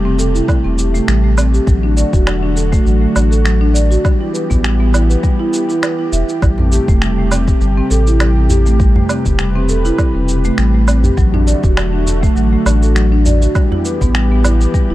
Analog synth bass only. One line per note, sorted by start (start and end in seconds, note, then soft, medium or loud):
0.00 0.41 E1 medium
0.65 1.00 E1 loud
1.08 1.60 A1 medium
1.67 2.04 A1 loud
2.13 2.78 E1 medium
2.86 3.06 A1 loud
3.16 3.97 A1 medium
4.51 5.16 A1 medium
6.13 6.23 E1 loud
6.42 6.79 A1 loud
6.88 7.54 E1 medium
7.61 7.81 G1 loud
7.91 9.02 A1 medium
9.26 9.91 E1 medium
10.15 10.50 E1 loud
10.58 11.10 A1 medium
11.18 11.54 A1 loud
11.64 12.29 E1 medium
12.36 12.56 A1 medium
12.66 13.47 A1 medium
14.01 14.66 A1 medium
14.90 14.95 E1 loud